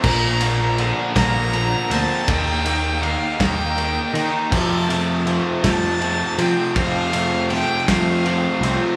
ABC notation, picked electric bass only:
X:1
M:6/8
L:1/16
Q:3/8=53
K:Fmix
V:1 name="Picked electric bass" clef=bass
B,,,6 B,,,4 D,, z | E,,6 E,,4 E, z | F,,6 F,,4 F, z | F,,6 F,,4 C,, z |]